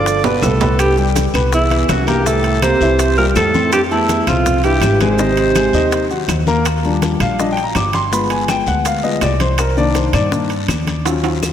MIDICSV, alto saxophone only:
0, 0, Header, 1, 2, 480
1, 0, Start_track
1, 0, Tempo, 366524
1, 1046, Time_signature, 4, 2, 24, 8
1, 15096, End_track
2, 0, Start_track
2, 0, Title_t, "Alto saxophone"
2, 0, Program_c, 0, 65
2, 0, Note_on_c, 0, 74, 94
2, 327, Note_on_c, 0, 71, 92
2, 347, Note_off_c, 0, 74, 0
2, 564, Note_on_c, 0, 69, 85
2, 583, Note_off_c, 0, 71, 0
2, 1031, Note_off_c, 0, 69, 0
2, 1039, Note_on_c, 0, 67, 95
2, 1265, Note_off_c, 0, 67, 0
2, 2021, Note_on_c, 0, 64, 98
2, 2488, Note_on_c, 0, 66, 89
2, 2507, Note_off_c, 0, 64, 0
2, 2721, Note_on_c, 0, 67, 92
2, 2740, Note_off_c, 0, 66, 0
2, 2962, Note_on_c, 0, 69, 108
2, 2981, Note_off_c, 0, 67, 0
2, 3437, Note_off_c, 0, 69, 0
2, 3445, Note_on_c, 0, 72, 102
2, 4112, Note_off_c, 0, 72, 0
2, 4159, Note_on_c, 0, 70, 92
2, 4267, Note_off_c, 0, 70, 0
2, 4403, Note_on_c, 0, 69, 104
2, 4847, Note_off_c, 0, 69, 0
2, 4883, Note_on_c, 0, 67, 102
2, 4990, Note_off_c, 0, 67, 0
2, 5129, Note_on_c, 0, 64, 95
2, 5606, Note_on_c, 0, 65, 98
2, 5625, Note_off_c, 0, 64, 0
2, 6072, Note_off_c, 0, 65, 0
2, 6080, Note_on_c, 0, 67, 98
2, 6525, Note_off_c, 0, 67, 0
2, 6565, Note_on_c, 0, 72, 98
2, 8187, Note_off_c, 0, 72, 0
2, 15096, End_track
0, 0, End_of_file